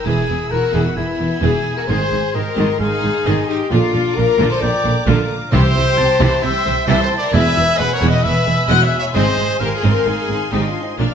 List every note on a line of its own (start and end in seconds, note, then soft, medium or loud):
0.00 0.50 G#5 medium
0.00 1.85 E6 medium
0.05 0.14 E1 medium
0.05 0.14 E2 medium
0.05 0.27 E3 medium
0.05 0.50 E4 medium
0.05 0.52 G#4 loud
0.05 0.27 G#4 medium
0.05 0.51 G#4 loud
0.05 0.53 G#5 medium
0.05 1.89 B5 medium
0.28 0.37 E1 medium
0.28 0.36 E2 medium
0.28 0.37 E3 medium
0.28 0.37 G#4 medium
0.50 0.60 E1 medium
0.50 0.59 E2 medium
0.50 0.60 E3 medium
0.50 0.60 E4 medium
0.50 0.74 F#4 medium
0.50 0.73 A#4 medium
0.50 0.74 A#4 loud
0.50 0.96 F#5 medium
0.50 0.74 A#5 medium
0.73 0.82 E1 medium
0.73 0.82 E2 loud
0.73 0.95 E3 medium
0.73 0.86 E4 medium
0.73 0.79 G#4 medium
0.73 0.85 G#4 loud
0.73 0.95 G#4 medium
0.73 0.85 G#5 medium
0.84 0.97 D#4 medium
0.84 0.96 F#4 medium
0.84 0.97 F#5 medium
0.96 1.06 E1 medium
0.96 1.05 E2 medium
0.96 1.05 E3 medium
0.96 1.43 B3 medium
0.96 1.42 E4 loud
0.96 1.42 E4 medium
0.96 1.05 G#4 medium
0.96 1.41 E5 medium
0.96 2.36 G#5 loud
1.19 1.28 E1 medium
1.19 1.27 E2 medium
1.19 1.28 E3 medium
1.19 1.28 E4 medium
1.41 1.51 E1 loud
1.41 1.50 E2 loud
1.41 1.64 E3 loud
1.41 1.78 E4 loud
1.41 1.76 G#4 medium
1.41 1.64 G#4 medium
1.41 1.76 G#5 medium
1.76 1.83 F#4 medium
1.76 1.88 A#4 loud
1.76 1.82 A#4 medium
1.76 1.88 A#5 medium
1.87 1.97 G#1 medium
1.87 1.97 G#2 medium
1.87 2.10 D#3 medium
1.87 2.10 G#4 medium
1.87 2.34 G#4 loud
1.87 2.33 C5 loud
1.87 2.34 C6 loud
1.87 3.71 C6 medium
2.12 2.20 G#1 medium
2.12 2.20 G#2 medium
2.12 2.20 D#3 medium
2.12 2.20 G#4 medium
2.34 2.43 G#1 medium
2.34 2.42 G#2 medium
2.34 2.42 D#3 medium
2.34 2.42 D#4 medium
2.34 2.79 G4 medium
2.34 2.79 A#4 medium
2.34 2.79 A#4 loud
2.34 2.79 D#5 medium
2.34 2.79 A#5 medium
2.57 2.65 G#1 loud
2.57 2.66 G#2 loud
2.57 2.78 D#3 loud
2.57 2.78 G#4 medium
2.80 2.88 G#1 medium
2.80 2.88 G#2 medium
2.80 2.88 D#3 medium
2.80 3.47 D#4 loud
2.80 3.47 G#4 loud
2.80 2.88 G#4 medium
2.80 3.47 G#4 loud
2.80 3.28 F5 loud
2.80 3.47 G#5 loud
3.03 3.11 G#1 medium
3.03 3.11 G#2 medium
3.03 3.11 D#3 medium
3.03 3.11 D#4 medium
3.25 3.34 G#1 loud
3.25 3.34 G#2 loud
3.25 3.47 D#3 loud
3.25 3.47 G#4 loud
3.25 3.72 D#5 medium
3.47 3.58 D#4 loud
3.47 3.70 G4 loud
3.47 3.71 G4 loud
3.47 3.71 G5 loud
3.70 3.79 A#1 loud
3.70 3.79 A#2 loud
3.70 3.92 D3 medium
3.70 4.15 D4 loud
3.70 4.17 F4 loud
3.70 3.92 F4 loud
3.70 4.17 F4 loud
3.70 4.61 D5 loud
3.70 4.15 F5 loud
3.70 5.49 A#5 medium
3.70 5.52 D6 medium
3.93 4.01 A#1 medium
3.93 4.02 A#2 medium
3.93 4.02 D3 medium
3.93 4.02 F4 medium
4.15 4.25 A#1 medium
4.15 4.25 A#2 medium
4.15 4.25 D3 medium
4.15 4.25 D4 medium
4.15 4.50 F4 loud
4.15 4.51 A#4 loud
4.15 4.50 A#4 loud
4.15 4.49 A#5 loud
4.39 4.47 A#1 loud
4.39 4.47 A#2 loud
4.39 4.60 D3 loud
4.39 4.60 F4 loud
4.49 4.61 A4 loud
4.49 4.62 C5 loud
4.49 4.61 C6 loud
4.60 4.70 A#1 medium
4.60 4.70 A#2 medium
4.60 4.70 D3 medium
4.60 4.70 F4 medium
4.60 5.07 A#4 loud
4.60 5.07 D5 loud
4.60 5.06 D5 loud
4.60 5.09 G5 loud
4.60 5.06 D6 loud
4.84 4.92 A#1 medium
4.84 4.93 A#2 medium
4.84 4.92 D3 medium
4.84 4.92 D4 medium
5.07 5.16 A#1 loud
5.07 5.15 A#2 loud
5.07 5.28 D3 loud
5.07 5.28 F4 loud
5.07 5.54 F5 medium
5.51 5.60 C2 loud
5.51 6.16 C3 loud
5.51 5.61 C3 loud
5.51 5.74 E3 loud
5.51 5.73 E4 loud
5.51 6.39 G4 loud
5.51 6.39 C5 loud
5.51 5.99 E5 loud
5.51 7.30 G5 loud
5.51 6.38 C6 loud
5.51 7.30 C6 loud
5.75 5.84 C2 medium
5.75 5.83 C3 medium
5.75 5.83 E3 medium
5.75 5.83 E4 medium
5.97 6.06 C2 medium
5.97 6.06 C3 medium
5.97 6.05 E3 medium
5.97 6.06 C4 loud
5.97 6.45 A5 loud
6.20 6.28 C2 loud
6.20 6.28 C3 loud
6.20 6.41 E3 loud
6.20 6.41 E4 loud
6.41 6.51 C2 medium
6.41 6.51 C3 loud
6.41 6.51 E3 medium
6.41 6.51 E4 medium
6.41 6.85 C5 loud
6.41 6.86 E5 loud
6.41 6.87 E5 loud
6.41 6.75 G5 loud
6.41 6.85 E6 loud
6.66 6.74 C2 medium
6.66 6.74 C3 medium
6.66 6.74 E3 medium
6.66 6.74 C4 medium
6.86 6.96 C2 loud
6.86 6.96 C3 loud
6.86 7.09 E3 loud
6.86 7.09 E4 loud
6.86 7.02 C5 loud
6.86 7.02 E5 loud
6.86 7.35 A5 loud
6.86 7.02 E6 loud
7.01 7.18 A4 loud
7.01 7.09 C5 loud
7.01 7.10 C5 loud
7.01 7.17 C6 loud
7.17 7.32 A#4 loud
7.17 7.25 D5 loud
7.17 7.34 D5 loud
7.17 7.32 D6 loud
7.32 7.42 E1 loud
7.32 7.41 E2 loud
7.32 7.54 G#3 loud
7.32 7.54 E4 loud
7.32 7.78 B4 loud
7.32 7.80 E5 loud
7.32 7.79 E5 loud
7.32 7.78 G#5 loud
7.32 10.99 G#5 loud
7.32 9.15 B5 loud
7.32 7.77 E6 loud
7.55 7.64 E1 medium
7.55 7.64 E2 medium
7.55 7.63 G#3 medium
7.55 7.64 E4 medium
7.78 7.87 E1 medium
7.78 7.87 E2 medium
7.78 7.87 G#3 loud
7.78 7.87 B3 medium
7.78 7.94 G#4 loud
7.78 7.94 B4 loud
7.78 7.95 B4 loud
7.78 8.23 F#5 loud
7.78 7.93 B5 loud
7.92 8.00 A#4 loud
7.92 8.09 C#5 loud
7.92 8.10 C#5 loud
7.92 8.08 C#6 loud
8.01 8.10 E1 loud
8.01 8.10 E2 loud
8.01 8.22 G#3 loud
8.01 8.23 E4 loud
8.07 8.22 B4 loud
8.07 8.24 D#5 loud
8.07 8.25 D#5 loud
8.07 8.23 D#6 loud
8.22 8.33 E1 medium
8.22 8.32 E2 medium
8.22 8.32 G#3 medium
8.22 8.32 E4 medium
8.22 8.68 B4 loud
8.22 8.69 E5 loud
8.22 8.86 E5 loud
8.22 8.69 E5 loud
8.22 8.69 E6 loud
8.46 8.56 E1 medium
8.46 8.54 E2 medium
8.46 8.55 G#3 medium
8.46 8.55 B3 medium
8.68 8.78 E1 loud
8.68 8.77 E2 loud
8.68 8.90 G#3 loud
8.68 8.90 E4 loud
8.68 8.85 F#4 loud
8.68 8.84 D#5 loud
8.68 8.86 F#5 loud
8.68 8.84 F#6 loud
8.83 8.98 C#5 loud
8.83 8.99 E5 loud
8.83 8.89 E6 loud
8.98 9.05 C#5 loud
8.98 9.06 E5 loud
8.98 9.07 E5 loud
8.98 9.14 E6 loud
9.13 9.23 G#1 loud
9.13 9.23 G#2 loud
9.13 9.36 C4 loud
9.13 9.36 D#4 loud
9.13 9.59 G#4 loud
9.13 9.59 C5 loud
9.13 9.62 D#5 loud
9.13 9.59 C6 loud
9.13 10.99 C6 loud
9.37 9.46 G#1 medium
9.37 9.46 G#2 medium
9.37 9.45 C4 medium
9.37 9.45 D#4 medium
9.59 9.69 G#1 medium
9.59 9.69 G#2 medium
9.59 9.69 C4 medium
9.59 9.75 G4 loud
9.59 9.75 A#4 loud
9.59 9.67 A#4 loud
9.59 10.52 F5 loud
9.59 9.75 A#5 loud
9.74 9.90 F4 loud
9.74 9.83 G#4 medium
9.74 9.83 G#4 loud
9.74 9.90 G#5 medium
9.83 9.92 G#1 loud
9.83 9.91 G#2 loud
9.83 10.04 C4 loud
9.83 10.04 D#4 medium
9.90 10.05 G4 loud
9.90 10.07 A#4 loud
9.90 10.06 A#4 loud
9.90 10.06 A#5 loud
10.05 10.15 G#1 medium
10.05 10.14 G#2 medium
10.05 10.14 C4 medium
10.05 10.49 D#4 loud
10.05 10.14 D#4 medium
10.05 10.53 G#4 loud
10.05 10.52 G#4 loud
10.05 10.52 G#5 loud
10.29 10.38 G#1 medium
10.29 10.37 G#2 medium
10.29 10.37 C4 medium
10.51 10.61 G#1 loud
10.51 10.61 G#2 loud
10.51 10.74 C4 medium
10.51 10.67 D#4 loud
10.51 10.74 D#4 medium
10.51 10.59 G4 medium
10.51 10.67 G4 medium
10.51 10.98 D#5 medium
10.51 10.67 G5 loud
10.66 10.82 D4 medium
10.66 10.83 F4 medium
10.66 10.83 F5 medium
10.82 10.98 C4 medium
10.82 10.91 D#4 medium
10.82 10.99 D#4 medium
10.82 10.99 D#5 medium
10.97 11.07 A#1 medium
10.97 11.07 A#2 medium
10.97 11.14 A#3 medium
10.97 11.14 A#3 loud
10.97 11.14 D4 medium
10.97 11.14 D4 loud
10.97 11.14 D5 medium
10.97 11.14 F5 medium
10.97 11.14 F6 medium